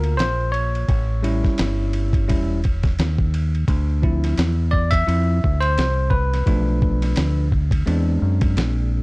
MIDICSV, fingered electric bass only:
0, 0, Header, 1, 2, 480
1, 0, Start_track
1, 0, Tempo, 697674
1, 612, Time_signature, 4, 2, 24, 8
1, 6210, End_track
2, 0, Start_track
2, 0, Title_t, "Fingered electric bass"
2, 0, Program_c, 0, 33
2, 0, Note_on_c, 0, 38, 97
2, 138, Note_off_c, 0, 38, 0
2, 138, Note_on_c, 0, 34, 88
2, 592, Note_off_c, 0, 34, 0
2, 612, Note_on_c, 0, 33, 85
2, 972, Note_off_c, 0, 33, 0
2, 1097, Note_on_c, 0, 31, 86
2, 1586, Note_off_c, 0, 31, 0
2, 1586, Note_on_c, 0, 28, 86
2, 2035, Note_off_c, 0, 28, 0
2, 2057, Note_on_c, 0, 39, 87
2, 2511, Note_off_c, 0, 39, 0
2, 2534, Note_on_c, 0, 38, 95
2, 2989, Note_off_c, 0, 38, 0
2, 3015, Note_on_c, 0, 40, 89
2, 3470, Note_off_c, 0, 40, 0
2, 3495, Note_on_c, 0, 41, 83
2, 3722, Note_off_c, 0, 41, 0
2, 3745, Note_on_c, 0, 38, 86
2, 3967, Note_off_c, 0, 38, 0
2, 3978, Note_on_c, 0, 36, 96
2, 4431, Note_off_c, 0, 36, 0
2, 4450, Note_on_c, 0, 35, 88
2, 4907, Note_off_c, 0, 35, 0
2, 4936, Note_on_c, 0, 38, 80
2, 5390, Note_off_c, 0, 38, 0
2, 5416, Note_on_c, 0, 40, 97
2, 5642, Note_off_c, 0, 40, 0
2, 5655, Note_on_c, 0, 42, 86
2, 5882, Note_off_c, 0, 42, 0
2, 5895, Note_on_c, 0, 34, 96
2, 6210, Note_off_c, 0, 34, 0
2, 6210, End_track
0, 0, End_of_file